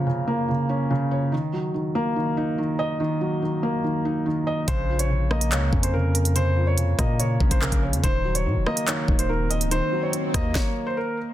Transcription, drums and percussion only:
4.68 kick, closed hi-hat
4.99 closed hi-hat
5.31 cross-stick
5.41 closed hi-hat
5.52 clap, closed hi-hat
5.73 kick
5.83 closed hi-hat
6.15 closed hi-hat
6.25 closed hi-hat
6.36 closed hi-hat
6.78 closed hi-hat
6.99 kick, cross-stick, closed hi-hat
7.20 closed hi-hat
7.40 kick
7.51 kick, closed hi-hat
7.62 clap
7.72 kick, closed hi-hat
7.93 closed hi-hat
8.04 kick, closed hi-hat
8.35 closed hi-hat
8.67 cross-stick
8.77 closed hi-hat
8.88 clap, closed hi-hat
9.08 kick
9.19 closed hi-hat
9.51 closed hi-hat
9.61 closed hi-hat
9.71 closed hi-hat
10.13 closed hi-hat
10.34 kick, cross-stick, closed hi-hat
10.55 kick, snare

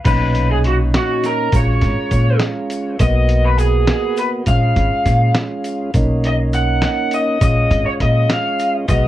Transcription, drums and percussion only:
0.05 kick, closed hi-hat, crash, shaker
0.35 closed hi-hat, shaker
0.64 closed hi-hat
0.94 snare, closed hi-hat
1.24 snare, closed hi-hat, shaker
1.52 kick, closed hi-hat, shaker
1.81 kick, snare, closed hi-hat, shaker
2.11 kick, closed hi-hat, shaker
2.40 snare, closed hi-hat
2.70 closed hi-hat, shaker
2.99 kick, closed hi-hat, shaker
3.29 closed hi-hat, shaker
3.58 closed hi-hat, shaker
3.88 snare, closed hi-hat
4.17 closed hi-hat, shaker
4.46 kick, closed hi-hat, shaker
4.76 kick, closed hi-hat, shaker
5.06 kick, snare, closed hi-hat, shaker
5.35 snare, closed hi-hat
5.64 closed hi-hat, shaker
5.94 kick, closed hi-hat, shaker
6.24 closed hi-hat, shaker
6.53 closed hi-hat, shaker
6.82 snare, closed hi-hat
7.11 closed hi-hat, shaker
7.41 kick, closed hi-hat, shaker
7.71 kick, closed hi-hat, shaker
8.00 kick, closed hi-hat
8.30 snare, closed hi-hat
8.59 closed hi-hat, shaker
8.88 kick, closed hi-hat, shaker

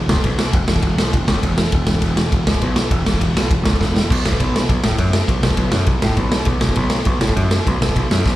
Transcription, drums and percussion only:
0.09 snare
0.16 kick
0.24 kick, ride
0.39 snare
0.53 kick, ride
0.68 snare
0.76 kick
0.82 kick, ride
0.98 snare
1.13 kick, ride
1.28 snare
1.36 kick
1.43 kick, ride
1.58 snare
1.72 kick, ride
1.87 snare
1.95 kick
2.02 kick, ride
2.17 snare
2.32 kick, ride
2.47 snare
2.54 kick
2.62 kick, ride
2.76 snare
2.91 kick, ride
3.06 snare
3.14 kick
3.21 kick, ride
3.37 snare
3.51 kick, ride
3.65 snare
3.73 kick
3.81 kick, snare
3.97 snare
4.10 kick, crash
4.26 snare
4.33 kick
4.40 kick, ride
4.56 snare
4.69 kick, ride
4.84 snare
4.91 kick
4.98 kick, ride
5.13 snare
5.28 kick, ride
5.43 snare
5.51 kick
5.57 kick, ride
5.72 snare
5.86 kick, ride
6.02 snare
6.09 kick
6.17 kick, ride
6.32 snare
6.45 kick, ride
6.61 snare
6.69 kick
6.76 kick, ride
6.90 snare
7.05 kick, ride
7.21 snare
7.29 kick
7.37 kick, ride
7.51 snare
7.67 kick, ride
7.82 snare
7.89 kick
7.96 kick, ride
8.11 snare
8.25 kick, snare

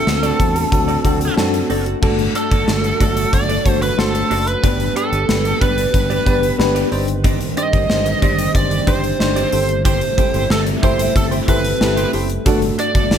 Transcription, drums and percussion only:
0.07 snare
0.23 closed hi-hat
0.40 kick, closed hi-hat
0.56 closed hi-hat
0.72 kick, closed hi-hat
0.89 closed hi-hat
1.05 kick, closed hi-hat
1.21 closed hi-hat
1.38 snare
1.54 closed hi-hat
1.70 open hi-hat
1.86 closed hi-hat
2.03 kick, crash
2.19 closed hi-hat
2.35 closed hi-hat
2.52 kick, closed hi-hat
2.68 snare
2.84 closed hi-hat
3.01 kick, closed hi-hat
3.17 closed hi-hat
3.33 kick, closed hi-hat
3.50 closed hi-hat
3.66 kick, closed hi-hat
3.82 closed hi-hat
3.99 snare
4.15 closed hi-hat
4.31 open hi-hat
4.47 closed hi-hat
4.64 kick, closed hi-hat
4.80 closed hi-hat
4.96 closed hi-hat
5.13 closed hi-hat
5.29 snare
5.45 closed hi-hat
5.61 kick, closed hi-hat
5.78 closed hi-hat
5.94 kick, closed hi-hat
6.11 closed hi-hat
6.26 kick, closed hi-hat
6.43 closed hi-hat
6.60 snare
6.76 closed hi-hat
6.92 open hi-hat
7.08 closed hi-hat
7.24 kick, closed hi-hat
7.41 closed hi-hat
7.57 closed hi-hat
7.73 kick, closed hi-hat
7.90 snare
8.06 closed hi-hat
8.22 kick, closed hi-hat
8.39 closed hi-hat
8.55 kick, closed hi-hat
8.71 closed hi-hat
8.87 kick, closed hi-hat
9.04 closed hi-hat
9.20 snare
9.36 closed hi-hat
9.52 open hi-hat
9.69 closed hi-hat
9.85 kick, closed hi-hat
10.01 closed hi-hat
10.18 kick, closed hi-hat
10.34 closed hi-hat
10.50 snare
10.67 closed hi-hat
10.83 kick, closed hi-hat
10.99 closed hi-hat
11.16 kick, closed hi-hat
11.32 closed hi-hat
11.48 kick, closed hi-hat
11.65 closed hi-hat
11.81 snare
11.97 closed hi-hat
12.13 open hi-hat
12.30 closed hi-hat
12.46 kick, closed hi-hat
12.62 closed hi-hat
12.79 closed hi-hat
12.95 kick, closed hi-hat
13.11 snare

